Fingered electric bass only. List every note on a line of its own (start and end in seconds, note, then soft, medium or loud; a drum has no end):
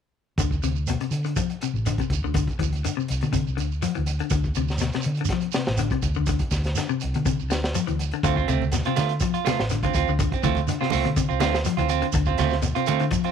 0.38 0.60 D2 medium
0.63 0.97 D2 medium
1.11 1.34 D3 medium
1.74 1.96 A1 medium
2.10 2.22 D2 medium
2.24 2.46 D2 medium
2.59 2.82 D2 medium
3.10 3.21 C2 medium
3.23 3.45 D3 medium
3.48 3.60 C2 medium
3.60 3.82 D2 medium
3.98 4.19 D2 medium
4.32 4.54 D2 medium
4.56 4.90 D2 medium
5.06 5.28 D3 medium
5.68 5.90 A1 medium
6.03 6.15 D2 medium
6.19 6.40 D2 medium
6.51 6.74 D2 medium
7.04 7.14 C2 medium
7.16 7.37 D3 medium
7.41 7.51 C2 medium
7.51 7.73 D2 medium
7.88 8.10 D2 medium
8.23 8.46 D2 medium
8.48 8.82 D2 medium
8.98 9.20 D3 medium
9.59 9.82 A1 medium
9.95 10.07 D2 medium
10.08 10.30 D2 medium
10.43 10.66 D2 medium
10.93 11.05 C2 medium
11.05 11.28 D3 medium
11.30 11.42 C2 medium
11.42 11.64 D2 medium
11.79 12.01 D2 medium
12.14 12.37 D2 medium
12.39 12.73 D2 medium
12.76 muted fingered electric bass stroke soft
12.88 13.11 D3 medium